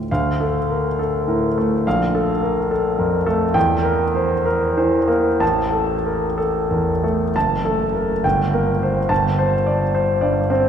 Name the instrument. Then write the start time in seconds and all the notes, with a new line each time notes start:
grand piano
Already playing: D2 A2 A3 F4 G4
0.11 D2 F5
0.40 A4
0.70 A#4
0.99 A4
1.27 A2 A#4
1.57 A3 A4
1.87 A#1 F5
2.15 A4
2.43 A#4
2.71 A4
2.98 F2 A#4
3.26 A3 A4
3.54 E2 G5
3.83 A#4
4.15 C5
4.46 A#4
4.77 E3 C5
5.08 A#3 A#4
5.40 A1 A5
5.72 A4
6.06 A#4
6.38 A4
6.70 E2 A#4
7.03 A3 A4
7.35 F#1 A5
7.65 A3 A4
7.95 A#4
8.24 G1 G5
8.53 A#3 A#4
8.83 C5
9.09 G1 A5
9.39 C5
9.66 D5
9.95 C5
10.21 G2 D5
10.50 C4 C5